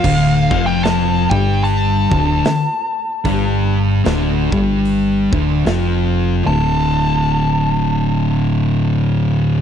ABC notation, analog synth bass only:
X:1
M:4/4
L:1/8
Q:"Swing" 1/4=75
K:Dm
V:1 name="Analog synth bass" clef=bass
D,,, F,,,2 G,,,2 D,,, z2 | G,,,2 D,,, G,,,2 D,,, F,,,2 | D,,,8 |]